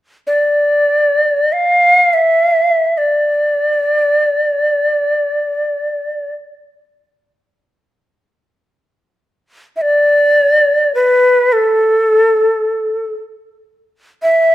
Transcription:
0.27 1.54 D5 medium
1.53 2.15 F5 medium
2.13 2.99 E5 medium
2.98 6.33 D5 medium
9.76 9.83 E5 soft
9.82 10.94 D5 medium
10.95 11.54 B4 medium
11.52 13.14 A4 medium
14.22 14.55 E5 medium

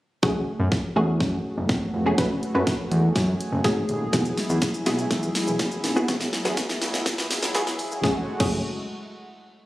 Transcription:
0.23 0.41 F#1 loud
0.23 0.71 A3 medium
0.23 4.09 A3 medium
0.23 0.71 C#4 medium
0.23 0.71 F#4 medium
0.23 4.09 F#4 medium
0.23 0.71 G#4 loud
0.23 8.00 G#4 medium
0.23 kick loud
0.23 snare medium
0.59 0.69 F#2 loud
0.72 kick loud
0.72 snare medium
0.96 1.22 E2 medium
0.96 1.60 A3 medium
0.96 1.60 C#4 medium
0.96 1.60 F#4 medium
0.96 1.60 G#4 loud
1.20 1.39 F#2 loud
1.20 kick loud
1.20 snare medium
1.57 1.66 F#1 medium
1.69 1.87 G#1 loud
1.69 kick loud
1.69 snare medium
1.94 2.12 F1 medium
2.06 2.14 A3 medium
2.06 2.14 C#4 medium
2.06 2.14 F#4 medium
2.06 2.14 G#4 loud
2.18 2.36 F#1 loud
2.18 2.42 A3 medium
2.18 2.42 C#4 medium
2.18 2.42 F#4 medium
2.18 2.42 B4 medium
2.18 kick loud
2.18 snare medium
2.18 closed hi-hat medium
2.43 closed hi-hat soft
2.55 2.64 F#2 medium
2.55 3.19 A3 medium
2.55 3.19 C#4 medium
2.55 3.19 F#4 medium
2.55 3.19 B4 medium
2.67 kick loud
2.67 snare medium
2.67 closed hi-hat medium
2.91 3.09 E2 medium
2.91 closed hi-hat medium
3.16 3.34 F#2 loud
3.16 kick loud
3.16 snare medium
3.16 closed hi-hat medium
3.41 closed hi-hat medium
3.52 3.61 F#1 loud
3.64 3.83 G#1 loud
3.64 3.96 A3 medium
3.64 3.96 C#4 medium
3.64 3.97 F#4 medium
3.64 3.97 G#4 loud
3.64 kick loud
3.64 snare medium
3.64 closed hi-hat medium
3.89 4.07 D#1 medium
3.89 closed hi-hat soft
4.13 4.31 E1 loud
4.13 8.00 F#3 medium
4.13 4.61 B3 medium
4.13 4.61 E4 medium
4.13 8.00 E4 medium
4.13 4.61 F#4 medium
4.13 4.61 G#4 medium
4.13 kick loud
4.13 snare medium
4.13 closed hi-hat medium
4.13 shaker medium
4.25 shaker medium
4.37 snare medium
4.37 open hi-hat medium
4.37 shaker soft
4.50 4.59 E2 medium
4.50 shaker medium
4.62 kick loud
4.62 snare medium
4.62 closed hi-hat medium
4.62 shaker medium
4.74 shaker medium
4.86 5.05 B1 loud
4.86 5.50 B3 medium
4.86 5.50 E4 medium
4.86 5.51 F#4 medium
4.86 5.51 G#4 loud
4.86 snare medium
4.86 open hi-hat medium
4.86 shaker medium
4.98 shaker medium
5.11 5.29 E2 loud
5.11 kick loud
5.11 snare medium
5.11 closed hi-hat medium
5.11 shaker medium
5.23 shaker medium
5.35 snare loud
5.35 open hi-hat medium
5.35 shaker medium
5.47 5.56 E1 medium
5.47 shaker medium
5.59 5.78 F#1 medium
5.59 kick loud
5.59 snare loud
5.59 closed hi-hat medium
5.59 shaker medium
5.71 shaker medium
5.84 6.02 D#1 medium
5.84 snare medium
5.84 open hi-hat medium
5.84 shaker soft
5.96 6.04 B3 medium
5.96 6.04 E4 medium
5.96 6.04 F#4 medium
5.96 6.04 G#4 medium
5.96 shaker medium
6.08 6.27 E1 loud
6.08 6.32 B3 medium
6.08 6.33 E4 medium
6.08 6.33 F#4 medium
6.08 6.33 G#4 medium
6.08 kick loud
6.08 snare loud
6.08 closed hi-hat medium
6.08 shaker medium
6.20 snare loud
6.20 shaker medium
6.33 snare loud
6.33 open hi-hat medium
6.33 shaker soft
6.45 6.54 E2 loud
6.45 7.09 B3 medium
6.45 7.09 E4 medium
6.45 7.09 F#4 medium
6.45 7.09 G#4 medium
6.45 snare loud
6.45 shaker medium
6.57 kick loud
6.57 snare loud
6.57 closed hi-hat medium
6.57 shaker medium
6.69 snare loud
6.69 shaker medium
6.82 7.00 C#2 medium
6.82 snare loud
6.82 open hi-hat medium
6.82 shaker medium
6.94 snare loud
6.94 shaker medium
7.06 kick loud
7.06 snare loud
7.06 closed hi-hat medium
7.06 shaker medium
7.18 7.27 E2 loud
7.18 snare loud
7.18 shaker medium
7.30 7.40 E1 medium
7.30 snare loud
7.30 open hi-hat medium
7.30 shaker medium
7.42 7.52 F#1 medium
7.42 snare loud
7.42 shaker medium
7.55 7.64 G#1 loud
7.55 7.87 B3 medium
7.55 7.87 E4 medium
7.55 7.87 F#4 medium
7.55 7.87 G#4 loud
7.55 snare loud
7.55 closed hi-hat medium
7.55 shaker medium
7.67 snare loud
7.67 shaker medium
7.79 7.88 E1 medium
7.79 open hi-hat medium
7.79 shaker soft
7.91 8.00 F#1 medium
7.91 shaker medium
8.03 8.17 F#1 loud
8.03 8.26 G#3 medium
8.03 8.26 A3 medium
8.03 8.17 A3 medium
8.03 8.17 C#4 medium
8.03 8.26 F#4 medium
8.03 8.17 F#4 medium
8.03 8.17 G#4 medium
8.03 kick loud
8.03 snare medium
8.40 8.63 F#1 loud
8.40 8.63 A3 medium
8.40 8.63 C#4 medium
8.40 8.63 F#4 medium
8.40 8.63 G#4 medium
8.40 kick loud
8.40 crash medium

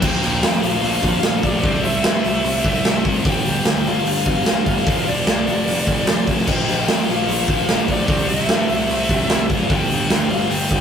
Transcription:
0.00 0.20 A#1 medium
0.00 1.61 A#2 medium
0.00 1.62 F3 medium
0.00 1.63 A#3 loud
0.00 0.59 G5 loud
0.00 kick loud
0.00 crash loud
0.21 0.40 A#1 medium
0.21 open hi-hat medium
0.41 0.61 F2 medium
0.41 snare loud
0.41 open hi-hat loud
0.61 0.81 A#1 medium
0.61 1.40 F5 loud
0.61 snare soft
0.61 open hi-hat medium
0.81 1.01 A#1 medium
0.81 open hi-hat medium
1.03 1.22 A#1 medium
1.03 kick medium
1.03 open hi-hat medium
1.23 1.42 A#1 medium
1.23 snare loud
1.23 open hi-hat medium
1.43 1.62 A#1 loud
1.43 1.83 D5 loud
1.43 kick medium
1.43 open hi-hat medium
1.62 1.82 C2 loud
1.62 3.23 C3 medium
1.62 3.24 G3 loud
1.62 3.25 C4 loud
1.62 kick loud
1.62 open hi-hat medium
1.84 2.03 C2 loud
1.84 3.01 E5 loud
1.84 open hi-hat medium
2.04 2.23 G2 medium
2.04 snare loud
2.04 open hi-hat medium
2.24 2.43 C2 medium
2.24 open hi-hat medium
2.44 2.63 C2 loud
2.44 open hi-hat medium
2.64 2.83 C2 loud
2.64 kick medium
2.64 open hi-hat medium
2.85 3.03 C2 medium
2.85 snare loud
2.85 open hi-hat medium
3.05 3.27 C2 loud
3.05 kick medium
3.05 open hi-hat medium
3.24 3.44 G1 loud
3.24 4.84 G2 medium
3.24 4.85 D3 loud
3.24 4.86 G3 loud
3.24 3.88 G5 loud
3.24 kick loud
3.24 open hi-hat medium
3.45 3.64 G1 medium
3.45 open hi-hat medium
3.65 3.84 D2 medium
3.65 snare loud
3.65 open hi-hat loud
3.85 4.05 G1 medium
3.85 4.67 F5 loud
3.85 snare soft
3.85 open hi-hat medium
4.05 4.25 G1 medium
4.05 open hi-hat loud
4.26 4.45 G1 loud
4.26 kick medium
4.26 open hi-hat medium
4.46 4.65 G1 medium
4.46 snare loud
4.46 open hi-hat medium
4.66 4.85 G1 medium
4.66 5.08 F5 loud
4.66 kick medium
4.66 open hi-hat medium
4.77 snare soft
4.86 5.05 F1 medium
4.86 6.46 F2 loud
4.86 6.46 C3 loud
4.86 6.47 F3 loud
4.86 kick loud
4.86 open hi-hat medium
5.06 5.25 F1 medium
5.06 6.24 D5 medium
5.06 open hi-hat medium
5.27 5.45 C2 medium
5.27 snare loud
5.27 open hi-hat medium
5.47 5.65 F1 medium
5.47 open hi-hat medium
5.67 5.86 F1 medium
5.67 open hi-hat medium
5.87 6.06 F1 loud
5.87 kick medium
5.87 open hi-hat medium
6.07 6.26 F1 medium
6.07 snare loud
6.07 open hi-hat medium
6.27 6.46 F1 medium
6.27 kick medium
6.27 open hi-hat medium
6.38 snare soft
6.46 6.66 A#1 loud
6.46 8.06 A#2 medium
6.46 8.07 F3 loud
6.46 8.08 A#3 loud
6.46 7.09 G5 loud
6.46 kick loud
6.46 crash loud
6.68 6.87 A#1 medium
6.68 open hi-hat medium
6.88 7.07 F2 medium
6.88 snare loud
6.88 open hi-hat loud
7.08 7.27 A#1 medium
7.08 7.85 F5 loud
7.08 snare soft
7.08 open hi-hat medium
7.28 7.47 A#1 loud
7.28 open hi-hat medium
7.48 7.67 A#1 medium
7.48 kick medium
7.48 open hi-hat medium
7.68 7.88 A#1 medium
7.68 snare loud
7.68 open hi-hat medium
7.88 8.07 A#1 medium
7.88 8.27 D5 loud
7.88 kick medium
7.88 open hi-hat medium
8.07 8.27 C2 loud
8.07 9.68 C3 loud
8.07 9.71 G3 medium
8.07 9.69 C4 medium
8.07 kick loud
8.07 open hi-hat medium
8.29 8.48 C2 medium
8.29 9.46 E5 loud
8.29 open hi-hat medium
8.49 8.68 G2 medium
8.49 snare loud
8.69 8.88 C2 medium
8.69 open hi-hat medium
8.89 9.08 C2 medium
8.89 open hi-hat medium
9.09 9.28 C2 medium
9.09 kick medium
9.09 open hi-hat medium
9.29 9.48 C2 loud
9.29 snare loud
9.29 open hi-hat medium
9.49 9.68 F#1 loud
9.49 kick medium
9.49 open hi-hat medium
9.63 9.70 F5 medium
9.68 9.88 G1 loud
9.68 10.81 G2 medium
9.68 10.81 D3 loud
9.68 10.81 G3 loud
9.68 10.27 G5 loud
9.68 kick loud
9.68 open hi-hat medium
9.89 10.08 G1 medium
9.89 open hi-hat medium
10.08 10.28 D2 medium
10.08 snare loud
10.08 open hi-hat loud
10.29 10.48 G1 medium
10.29 10.50 F5 loud
10.29 open hi-hat medium
10.50 10.69 G1 loud
10.50 10.81 G5 loud
10.50 open hi-hat loud
10.71 10.81 G1 loud
10.71 kick loud
10.71 open hi-hat medium

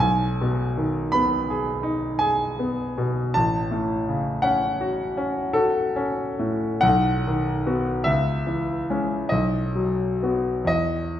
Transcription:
0.00 3.28 B1 medium
0.00 1.12 G#5 medium
0.41 1.00 B2 soft
0.77 1.35 D#3 soft
1.12 1.70 B3 soft
1.12 2.20 B5 medium
1.50 2.06 G#4 soft
1.83 2.43 D#4 soft
2.19 2.83 G#4 soft
2.19 3.34 G#5 medium
2.59 3.20 B3 soft
2.98 3.35 B2 soft
3.34 6.80 A1 medium
3.34 4.43 A5 medium
3.71 4.29 A2 soft
4.09 4.67 C#3 soft
4.42 5.03 C#4 soft
4.42 5.17 F#5 medium
4.81 5.40 F#4 soft
5.17 5.79 C#4 soft
5.53 6.21 F#4 soft
5.53 6.82 A4 medium
5.96 6.66 C#4 soft
6.39 6.84 A2 soft
6.81 8.02 B1 medium
6.81 8.04 F#5 medium
7.27 7.90 D#3 soft
7.66 8.02 B3 soft
7.66 8.02 F#4 soft
8.04 9.28 C#2 medium
8.04 9.31 E5 medium
8.47 9.15 E3 soft
8.90 9.28 G#3 soft
8.90 9.28 C#4 soft
9.29 10.65 B1 medium
9.29 10.66 D#5 medium
9.75 10.50 F#3 soft
10.23 10.66 B3 soft
10.23 10.66 F#4 soft
10.65 11.20 E2 medium
10.65 11.20 D#5 medium

